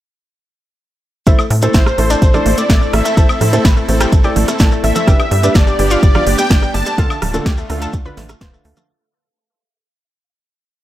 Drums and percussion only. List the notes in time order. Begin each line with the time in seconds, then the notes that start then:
1.27 kick, cross-stick, closed hi-hat, shekere
1.39 high woodblock, shekere
1.50 open hi-hat
1.62 closed hi-hat, high conga, shekere
1.74 kick, snare, closed hi-hat, shekere
1.86 cross-stick, shekere
1.98 open hi-hat
2.10 closed hi-hat, shekere
2.22 kick, closed hi-hat, shekere
2.34 cross-stick, low conga, shekere
2.46 open hi-hat, high conga
2.58 closed hi-hat, shekere
2.70 kick, snare, closed hi-hat, shekere
2.82 shekere
2.93 cross-stick, open hi-hat, high conga
3.05 closed hi-hat, shekere
3.17 kick, closed hi-hat, shekere
3.29 high woodblock, shekere
3.41 cross-stick, open hi-hat, low conga
3.53 closed hi-hat, high conga, shekere
3.65 kick, snare, closed hi-hat, shekere
3.77 shekere
3.89 open hi-hat
4.00 cross-stick, closed hi-hat, shekere
4.12 kick, closed hi-hat, shekere
4.23 shekere
4.36 open hi-hat, high conga, low conga
4.48 cross-stick, closed hi-hat, shekere
4.59 kick, snare, closed hi-hat, shekere
4.72 shekere
4.84 open hi-hat, high conga
4.95 closed hi-hat, low conga, shekere
5.08 kick, cross-stick, closed hi-hat, shekere
5.20 high woodblock, shekere
5.31 open hi-hat
5.43 closed hi-hat, high conga, shekere
5.55 kick, cross-stick, snare, closed hi-hat, shekere
5.67 shekere
5.79 open hi-hat
5.90 closed hi-hat, shekere
6.03 kick, closed hi-hat, shekere
6.15 cross-stick, low conga, shekere
6.27 open hi-hat, high conga
6.38 closed hi-hat, shekere
6.50 kick, snare, closed hi-hat, shekere
6.63 cross-stick, shekere
6.74 open hi-hat, high conga
6.86 closed hi-hat, shekere
6.98 kick, closed hi-hat, shekere
7.10 high woodblock, shekere
7.22 cross-stick, open hi-hat, low conga
7.34 closed hi-hat, high conga, shekere
7.46 kick, snare, closed hi-hat, shekere
7.57 shekere
7.70 cross-stick, open hi-hat
7.82 closed hi-hat, shekere
7.93 kick, closed hi-hat, shekere
8.05 shekere
8.17 snare, open hi-hat, high conga, low conga
8.29 cross-stick, closed hi-hat, shekere
8.41 kick, snare, closed hi-hat, shekere
8.54 shekere
8.65 open hi-hat, high conga
8.77 cross-stick, closed hi-hat, low conga, shekere